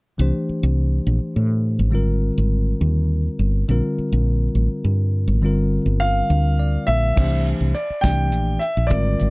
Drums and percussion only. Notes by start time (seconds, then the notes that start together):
7.17 kick, crash
7.46 closed hi-hat
7.75 closed hi-hat
8.03 kick, snare, closed hi-hat
8.32 closed hi-hat
8.61 closed hi-hat
8.90 kick, closed hi-hat
9.20 closed hi-hat